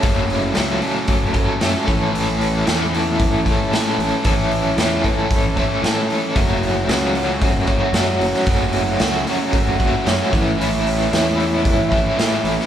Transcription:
<<
  \new Staff \with { instrumentName = "Overdriven electric guitar" } { \time 4/4 \key fis \minor \tempo 4 = 114 <fis, cis fis a cis' a'>4 <fis, cis fis a cis' a'>8 <fis a cis' a'>4 <fis a cis' a'>8 <fis a cis' a'>8 <a, e a cis' a'>8 | <a, e a cis' a'>4 <a, e a cis' a'>8 <a cis' a'>4 <a cis' a'>8 <e a cis' a'>4 | <a, e a cis' a'>4 <a, e a cis' a'>8 <a cis' a'>4 <a cis' a'>8 <e a cis' a'>4 | <fis, cis fis a cis' fis'>4 <fis, cis fis a cis' fis'>8 <fis a cis' fis'>4 <fis a cis' fis'>8 <fis a cis' fis'>4 |
<fis, cis fis a cis' fis'>4 <fis, cis fis a cis' fis'>8 <fis a cis' fis'>4 <fis a cis' fis'>8 <fis a cis' fis'>8 <a, e a cis' e'>8 | <a, e a cis' e'>4 <a, e a cis' e'>8 <a cis' e'>4 <a cis' e'>8 <e a cis' e'>4 | }
  \new Staff \with { instrumentName = "Fingered electric bass" } { \clef bass \time 4/4 \key fis \minor fis,,4 cis,8 r8. fis,,16 fis,,16 r16 fis,16 r16 a,,8~ | a,,4 e,4~ e,16 a,,8 r16 a,8 a,,16 r16 | a,,4 e,8 r8. a,,16 a,,16 r16 a,8 r8 | fis,,4 cis,4~ cis,16 fis,,8 r16 fis,8 fis,,16 r16 |
fis,,4 cis,8 r8. fis,,16 fis,,16 r16 fis,16 r16 a,,8~ | a,,4 e,4~ e,16 a,,8 r16 a,8 a,,16 r16 | }
  \new DrumStaff \with { instrumentName = "Drums" } \drummode { \time 4/4 <hho bd>8 hho8 <hho sn>8 hho8 <hho bd>8 <hho bd>8 <hho sn>8 <hho bd>8 | hho8 hho8 <hho sn>8 hho8 <hho bd>8 <hho bd>8 <hho sn>8 hho8 | <hho bd>8 hho8 <hho sn>8 <hho bd>8 <hho bd>8 <hho bd>8 <hho sn>8 hho8 | <hho bd>8 hho8 <hho sn>8 hho8 <hho bd>8 <hho bd>8 <hho sn>8 hho16 sn16 |
<hho bd>8 hho8 <hho sn>8 hho8 <hho bd>8 <hho bd>8 <hho sn>8 <hho bd>8 | hho8 hho8 <hho sn>8 hho8 <hho bd>8 <hho bd>8 <hho sn>8 hho16 sn16 | }
>>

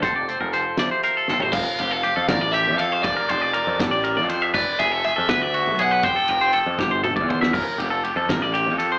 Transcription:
<<
  \new Staff \with { instrumentName = "Overdriven electric guitar" } { \time 6/8 \key bes \lydian \tempo 4. = 80 r2. | f''4. d''8 e''8 f''8 | d''2~ d''8 r8 | d''8 e''8 e''4. ges''8 |
g''4 r2 | r2. | }
  \new Staff \with { instrumentName = "Clean electric guitar" } { \time 6/8 \key bes \lydian c''16 d''16 c''16 bes'16 c''8 d''16 c''16 bes'16 a'16 a'16 c''16 | bes'8 g'16 a'16 g'16 a'16 bes'16 d''16 g'8 a'16 c''16 | d''16 bes'16 c''16 d''16 bes'8 a'16 d''16 bes'16 d''16 c''16 e''16 | b'8 gis'16 a'16 gis'16 a'16 b'16 d''16 ges'8 gis'16 b'16 |
c''16 a'16 bes'16 c''16 a'8 g'16 c''16 a'16 d''16 c''16 e''16 | bes'8 g'16 a'16 g'16 a'16 bes'16 d''16 g'8 a'16 c''16 | }
  \new Staff \with { instrumentName = "Clean electric guitar" } { \clef bass \time 6/8 \key bes \lydian << { a'8 c'4. c''8 c'8 | r2. | r2. | r2. |
r2. | r2. | } \\ { <f, f>4 f8 c4. | r2. | r2. | r2. |
r2. | r2. | } >> }
  \new Staff \with { instrumentName = "Picked electric bass" } { \clef bass \time 6/8 \key bes \lydian f,,8 r16 f,,8 r4 r16 f,,16 a,,16 | f,,16 r16 f,,8 r16 f,16 a,,8. f,8. | f,,16 r16 f,,8 r16 f,16 a,,8. f,8. | f,,16 r16 f,,8 r16 f,16 d,8. b,,8. |
f,,16 r16 f,,8 r16 f,16 g,,8. e,8. | f,,16 r16 f,,8 r16 f,16 a,,8. f,8. | }
  \new DrumStaff \with { instrumentName = "Drums" } \drummode { \time 6/8 <hh bd>8 hh8 hh8 <hh sn>8 hh8 sn16 tomfh16 | <cymc bd>8 cymr8 cymr8 <bd cymr sn>8 cymr8 cymr8 | <bd cymr>8 cymr8 cymr8 <bd cymr sn>8 cymr8 cymr8 | <cymc bd>8 cymr8 cymr8 <bd cymr sn>8 cymr8 cymr8 |
<bd cymr>8 cymr8 cymr8 <bd sn>8 toml16 bd16 tomfh16 sn16 | <cymc bd>8 cymr8 cymr8 <bd cymr sn>8 cymr8 cymr8 | }
>>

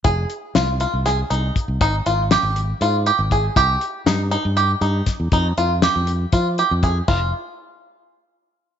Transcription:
<<
  \new Staff \with { instrumentName = "Five-string banjo" } { \time 7/8 \key f \minor \tempo 4 = 119 aes'4 f'8 f'8 aes'8 ees'4 | ees'8 f'8 g'4 f'8 g'8 aes'8 | g'4 ees'8 ees'8 g'8 ees'4 | ees'8 f'8 g'4 f'8 g'8 aes'8 |
f'8 r2. | }
  \new Staff \with { instrumentName = "Fretless electric bass" } { \clef bass \time 7/8 \key f \minor f,,8 r8 c,8. c,8. c,8 r16 c,16 | aes,,8 aes,,8. aes,,8. aes,8. aes,,8. | c,8 r8 g,8. g,8. g,8 r16 e,16 | f,8 f,8. f,8. f8. f,8. |
f,,8 r2. | }
  \new DrumStaff \with { instrumentName = "Drums" } \drummode { \time 7/8 <hh bd>8 hh8 <hh sn>8 hh8 <hh sn>8 hh8 <hh bd>8 | <hh bd>8 hh8 <hh sn>8 hh8 hh8 hh8 <hh bd>8 | <hh bd>8 hh8 <hh sn>8 hh8 hh8 hh8 <hh bd sn>8 | <hh bd>8 hh8 <hh sn>8 hh8 <hh bd>8 hh8 <hh bd>8 |
<cymc bd>4 r4 r4. | }
>>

